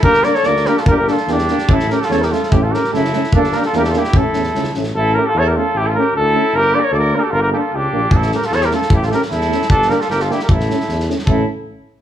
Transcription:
0.02 tuba G1, euphonium A#3 D4, trumpet G4, flugelhorn A#4, kick
0.14 snare
0.23 euphonium A#3 D4, trumpet A#4, flugelhorn D5, snare
0.35 trumpet A4, flugelhorn C#5, snare
0.43 tuba D2, euphonium A#3 D4, flugelhorn D5, snare
0.48 trumpet A#4
0.56 snare
0.65 euphonium A#3 D4, trumpet G4, flugelhorn A#4, snare
0.77 trumpet F4, flugelhorn A4, snare
0.86 tuba G1, euphonium A#3 D4, flugelhorn A#4, kick
0.90 trumpet G4
0.97 flugelhorn A#4
1.01 trumpet G4
1.07 euphonium A#3 D4, flugelhorn A4, snare
1.13 trumpet F4
1.17 snare
1.27 tuba E2, euphonium A#3 D4, flugelhorn G4, snare
1.32 trumpet D4
1.38 snare
1.48 euphonium A#3 D4, snare
1.58 snare
1.68 tuba A1, euphonium A3 C#4, flugelhorn A4, kick
1.74 trumpet E4
1.79 snare
1.89 euphonium A3 C#4, trumpet G4, flugelhorn A#4, snare
2.00 flugelhorn A4, snare
2.05 euphonium A3, trumpet F4
2.09 tuba E2, euphonium C#4, flugelhorn C#5, snare
2.13 trumpet A4
2.21 trumpet G4, flugelhorn A#4, snare
2.31 euphonium A3 C#4, trumpet F4, flugelhorn A4, snare
2.43 snare
2.49 tuba A1, euphonium A3 C#4, trumpet E4, flugelhorn G4, kick
2.62 trumpet F4, flugelhorn A4
2.70 euphonium A3 C#4, trumpet G4, snare
2.74 flugelhorn A#4
2.84 snare
2.92 tuba F#1, euphonium A3 C#4, trumpet E4, flugelhorn A4, snare
3.04 snare
3.12 euphonium A3 C#4, snare
3.24 snare
3.32 tuba G1, euphonium A#3 D4, trumpet D4, flugelhorn A4, kick
3.44 snare
3.52 euphonium A#3, flugelhorn A#4, snare
3.57 euphonium D4, trumpet G4
3.63 trumpet F4, flugelhorn A4, snare
3.73 tuba E2, euphonium A#3 D4, flugelhorn A#4, snare
3.78 trumpet G4
3.84 flugelhorn A4, snare
3.90 euphonium D4, trumpet F4, snare
3.94 euphonium A#3, trumpet E4, flugelhorn G4
4.04 snare
4.13 tuba A1, euphonium A3 C#4, trumpet E4, flugelhorn A4, kick
4.33 tuba E2, euphonium A3 C#4, snare
4.43 snare
4.55 tuba C#2, euphonium A3 C#4, snare
4.63 snare
4.74 tuba A1, euphonium A3 C#4, snare
4.83 snare
4.95 tuba A1, trumpet E4, flugelhorn A4
5.14 euphonium A3 C#4, flugelhorn A#4
5.19 trumpet G4
5.26 trumpet F4, flugelhorn A4
5.34 tuba E2, trumpet A4
5.39 flugelhorn C#5
5.46 trumpet G4, flugelhorn A#4
5.56 euphonium A3 C#4, trumpet F4, flugelhorn A4
5.74 tuba A1, flugelhorn G4
5.81 trumpet E4
5.86 trumpet F4, flugelhorn A4
5.94 euphonium A3 C#4, flugelhorn A#4
5.99 trumpet G4
6.14 tuba D2, flugelhorn A4
6.21 trumpet E4
6.33 euphonium A3 C#4
6.53 tuba G1, flugelhorn A#4
6.58 trumpet G4
6.73 euphonium A#3 D4, flugelhorn D5
6.80 trumpet A#4
6.84 flugelhorn C#5
6.91 tuba D2, trumpet A4, flugelhorn D5
6.99 trumpet A#4
7.13 euphonium A#3 D4, flugelhorn A#4
7.20 trumpet G4, flugelhorn A4
7.31 tuba G1, trumpet F4, flugelhorn A#4
7.40 trumpet G4, flugelhorn A#4
7.52 euphonium A#3 D4, trumpet G4, flugelhorn A4
7.59 trumpet F4
7.73 tuba C#2, trumpet D4, flugelhorn G4
7.91 tuba A#1, euphonium A#3 D4
8.10 tuba A1, flugelhorn A4, kick
8.17 trumpet E4
8.22 snare
8.32 euphonium A3 C#4, trumpet G4, flugelhorn A#4, snare
8.42 trumpet F4, flugelhorn A4, snare
8.50 tuba E2, trumpet A4, snare
8.55 flugelhorn C#5
8.61 trumpet G4, snare
8.65 flugelhorn A#4
8.70 euphonium A3 C#4, trumpet F4, snare
8.75 flugelhorn A4
8.82 snare
8.89 tuba A1, trumpet E4, kick
8.95 flugelhorn G4
9.02 trumpet F4, snare
9.06 euphonium A3, flugelhorn A4
9.11 euphonium C#4, trumpet G4, flugelhorn A#4, snare
9.22 snare
9.30 tuba E2, trumpet E4, flugelhorn A4, snare
9.41 snare
9.48 euphonium A3, snare
9.52 euphonium C#4
9.62 snare
9.70 tuba G1, trumpet D4, flugelhorn A4, kick
9.82 snare
9.88 euphonium A#3 D4, trumpet G4, flugelhorn A#4, snare
10.00 trumpet F4, flugelhorn A4, snare
10.09 tuba G1, trumpet G4, flugelhorn A#4, snare
10.20 trumpet F4, flugelhorn A4, snare
10.29 euphonium A#3 D4, trumpet E4, flugelhorn G4, snare
10.39 flugelhorn A#4, snare
10.43 trumpet G4
10.49 tuba A1, trumpet E4, flugelhorn A4, kick
10.60 snare
10.69 euphonium A3 C#4, snare
10.80 snare
10.88 tuba E2, snare
11.00 snare
11.08 euphonium A3 C#4, snare
11.19 snare
11.25 tuba A1, euphonium A3 C#4, trumpet E4, flugelhorn A4, kick

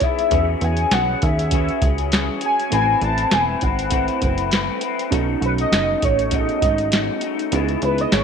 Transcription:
Already playing: synth keys D#4 E4 G#4 B4
0.00 clean electric guitar B3 E4 G#4, soft synth lead E5, kick, snare, closed hi-hat
0.19 closed hi-hat
0.30 analog synth bass E2, clean electric guitar E3 C#4 F#4 G#4, synth keys C#4 F#4 G#4 B4, kick, closed hi-hat
0.61 analog synth bass E2, clean electric guitar C#4 F#4 G#4, soft synth lead G#5, closed hi-hat
0.77 closed hi-hat
0.91 analog synth bass B1, clean electric guitar E3 C#4 F#4 G#4, soft synth lead F#5, snare, closed hi-hat
1.22 analog synth bass D#2, clean electric guitar C#4 F#4 G#4, soft synth lead E5, kick, closed hi-hat
1.39 closed hi-hat
1.51 synth keys C#4 F#4 G#4 B4, clean electric guitar C#4 F#4, kick, closed hi-hat
1.55 clean electric guitar G#4
1.69 closed hi-hat
1.81 analog synth bass C#2, clean electric guitar C#4 F#4 G#4, kick, closed hi-hat
1.98 closed hi-hat
2.12 clean electric guitar E3 C#4 F#4 G#4, snare, closed hi-hat
2.41 clean electric guitar C#4 F#4 G#4, closed hi-hat
2.45 soft synth lead G#5
2.59 closed hi-hat
2.70 analog synth bass A1, clean electric guitar A3 C4 E4 B4, synth keys C4 E4 A4 B4, soft synth lead G#5, closed hi-hat
3.01 analog synth bass A1, clean electric guitar C4 E4 B4, soft synth lead A5, closed hi-hat
3.18 closed hi-hat
3.31 analog synth bass E1, clean electric guitar A3 C4 E4 B4, soft synth lead G#5, snare, closed hi-hat
3.60 analog synth bass G#1, clean electric guitar C4 E4 B4, soft synth lead F#5, kick, closed hi-hat
3.79 closed hi-hat
3.90 clean electric guitar A3 C4 E4 B4, synth keys C4 E4 A4 C5, kick, closed hi-hat
4.08 closed hi-hat
4.21 analog synth bass F#1, clean electric guitar C4 E4 B4, kick, closed hi-hat
4.38 closed hi-hat
4.51 clean electric guitar A3 C4 E4 B4, snare, closed hi-hat
4.81 clean electric guitar C4 E4 B4, closed hi-hat
4.99 closed hi-hat
5.10 analog synth bass B1, clean electric guitar B2 A3 D#4 F#4, synth keys C#4 D#4 F#4 A4, kick, closed hi-hat
5.41 analog synth bass B1, clean electric guitar A3 D#4 F#4, closed hi-hat
5.45 soft synth lead B4
5.58 soft synth lead D#5, closed hi-hat
5.72 analog synth bass F#1, clean electric guitar B2 A3 D#4 F#4, snare, closed hi-hat
6.01 analog synth bass A1, clean electric guitar A3 D#4 F#4, soft synth lead C#5, kick, closed hi-hat
6.19 closed hi-hat
6.31 clean electric guitar B2 A3 D#4 F#4, synth keys C#4 D#4 F#4 G#4, soft synth lead D#5, kick, closed hi-hat
6.40 synth keys A4
6.49 closed hi-hat
6.62 analog synth bass G#1, clean electric guitar A3 D#4 F#4, kick, closed hi-hat
6.78 closed hi-hat
6.92 clean electric guitar B2 A3 D#4 F#4, snare, closed hi-hat
7.21 clean electric guitar D#4 F#4, closed hi-hat
7.26 clean electric guitar A3
7.39 closed hi-hat
7.51 analog synth bass C#2, clean electric guitar C#3 G#3 B3, synth keys B3 D#4 E4 F#4, closed hi-hat
7.55 clean electric guitar E4
7.60 synth keys G#4
7.68 closed hi-hat
7.82 analog synth bass C#2, clean electric guitar G#3 B3 E4, soft synth lead B4, closed hi-hat
7.98 soft synth lead D#5, closed hi-hat
8.12 analog synth bass G#1, clean electric guitar C#3 G#3 B3 E4, soft synth lead C#5, snare, closed hi-hat

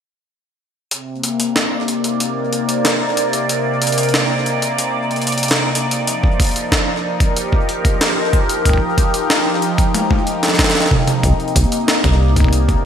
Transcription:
0.91 analog synth pad C3, closed hi-hat
1.13 analog synth pad A#3
1.24 closed hi-hat
1.40 closed hi-hat
1.47 analog synth pad D5
1.56 snare
1.88 closed hi-hat
1.99 analog synth pad D#4
2.04 closed hi-hat
2.20 closed hi-hat
2.53 closed hi-hat
2.69 closed hi-hat
2.85 snare, closed hi-hat
3.17 closed hi-hat
3.33 closed hi-hat
3.49 closed hi-hat
3.82 closed hi-hat
3.87 closed hi-hat
3.92 closed hi-hat
3.98 closed hi-hat
4.03 closed hi-hat
4.09 closed hi-hat
4.14 snare
4.46 closed hi-hat
4.62 closed hi-hat
4.78 closed hi-hat
5.11 closed hi-hat
5.16 closed hi-hat
5.22 closed hi-hat
5.27 closed hi-hat
5.32 closed hi-hat
5.38 closed hi-hat
5.43 closed hi-hat
5.48 snare, closed hi-hat
5.75 closed hi-hat
5.91 closed hi-hat
6.07 analog synth pad F3, closed hi-hat
6.24 kick
6.40 kick, closed hi-hat
6.42 closed hi-hat
6.44 closed hi-hat
6.47 closed hi-hat
6.49 closed hi-hat
6.51 closed hi-hat
6.54 closed hi-hat
6.56 closed hi-hat
6.72 kick, snare
7.02 analog synth pad A#4
7.20 analog synth pad G4, kick, closed hi-hat
7.37 closed hi-hat
7.53 kick
7.69 closed hi-hat
7.85 kick, closed hi-hat
8.01 snare, closed hi-hat
8.33 kick, closed hi-hat
8.49 closed hi-hat
8.65 kick, closed hi-hat
8.69 kick
8.73 kick
8.78 kick
8.98 kick, closed hi-hat
9.14 closed hi-hat
9.30 snare
9.62 closed hi-hat
9.78 kick, closed hi-hat
9.95 closed hi-hat, high tom
10.11 kick, high tom
10.27 closed hi-hat
10.43 snare, closed hi-hat
10.48 snare
10.54 snare
10.59 kick, snare, closed hi-hat
10.64 snare
10.70 snare
10.75 snare
10.81 snare
10.86 snare
10.91 kick, mid tom
11.08 closed hi-hat, mid tom
11.23 acid bass C2, analog synth pad C3, kick, closed hi-hat
11.40 analog synth pad A#3, closed hi-hat
11.48 closed hi-hat
11.56 acid bass C2, kick, closed hi-hat
11.64 closed hi-hat
11.72 closed hi-hat
11.88 analog synth pad D5, snare, closed hi-hat
12.04 acid bass C2, finger snap, kick, closed hi-hat
12.36 kick, closed hi-hat
12.40 kick
12.44 kick
12.48 kick
12.53 closed hi-hat
12.69 kick, closed hi-hat

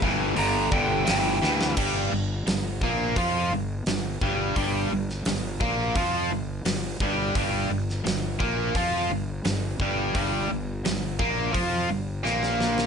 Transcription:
0.02 fingered electric bass G1, overdriven electric guitar G2 E3, kick
0.36 fingered electric bass G1, overdriven electric guitar G2 D3, electric slide guitar A#5, open hi-hat
0.71 fingered electric bass G1, overdriven electric guitar G2 D3, electric slide guitar G5, kick
1.05 fingered electric bass G1, overdriven electric guitar G2 E3, snare, open hi-hat
1.42 fingered electric bass D2, overdriven electric guitar G2 E3, snare
1.61 snare
1.77 fingered electric bass G1, overdriven electric guitar G2 G3, kick, crash
2.12 fingered electric bass G1, overdriven electric guitar G2
2.46 fingered electric bass G1, overdriven electric guitar G2, snare, open hi-hat
2.81 fingered electric bass A#1, overdriven electric guitar A#2 A#3, kick
3.16 fingered electric bass F2, overdriven electric guitar F3 F4, kick, open hi-hat
3.50 fingered electric bass G1, overdriven electric guitar G2
3.86 fingered electric bass G1, overdriven electric guitar G2, snare, open hi-hat
4.21 fingered electric bass G1, overdriven electric guitar G2 G3, kick
4.56 fingered electric bass G1, overdriven electric guitar G2 G3, kick, open hi-hat
4.91 fingered electric bass G1, overdriven electric guitar G2
5.09 snare
5.25 fingered electric bass G1, overdriven electric guitar G2, snare, open hi-hat
5.60 fingered electric bass A#1, overdriven electric guitar A#2 A#3, kick
5.95 fingered electric bass F2, overdriven electric guitar F3 F4, kick, open hi-hat
6.31 fingered electric bass G1, overdriven electric guitar G2
6.65 fingered electric bass G1, overdriven electric guitar G2, snare, open hi-hat
7.00 fingered electric bass G1, overdriven electric guitar G2 G3, kick
7.35 fingered electric bass G1, overdriven electric guitar G2 G3, kick, open hi-hat
7.70 fingered electric bass G1, overdriven electric guitar G2
7.89 snare
8.04 fingered electric bass G1, overdriven electric guitar G2, snare, open hi-hat
8.39 fingered electric bass A#1, overdriven electric guitar A#2 A#3, kick
8.75 fingered electric bass F2, overdriven electric guitar F3 F4, kick, open hi-hat
9.10 fingered electric bass G1, overdriven electric guitar G2
9.45 fingered electric bass G1, overdriven electric guitar G2, snare, open hi-hat
9.80 fingered electric bass G1, overdriven electric guitar G2 G3, kick
10.15 fingered electric bass G1, overdriven electric guitar G2 G3, kick, open hi-hat
10.49 fingered electric bass G1, overdriven electric guitar G2
10.85 fingered electric bass G1, overdriven electric guitar G2, snare, open hi-hat
11.19 fingered electric bass A#1, overdriven electric guitar A#2 A#3, kick
11.53 fingered electric bass F2, overdriven electric guitar F3 F4, kick, open hi-hat
11.89 fingered electric bass G1, overdriven electric guitar G2
12.24 fingered electric bass A#1, overdriven electric guitar A#2 A#3, snare
12.43 snare
12.61 snare
12.78 snare

